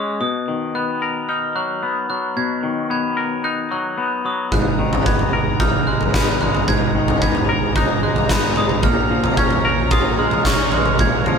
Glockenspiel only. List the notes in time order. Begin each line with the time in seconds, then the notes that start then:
Already playing: D#6
0.21 D#6
0.75 F#6
1.29 F6
1.56 F#6
2.10 F#6
2.37 G#6
2.91 G#6
3.44 F#6
3.72 F#6
4.26 D#6
4.53 F#6
5.06 G#6
5.60 F6
5.87 F#6
6.41 F#6
6.68 G#6
7.22 G#6
7.76 F#6
8.03 F#6
8.57 D#6
8.84 F6
9.37 G#6
9.92 D#6
10.19 F6
10.73 F6
11.00 G#6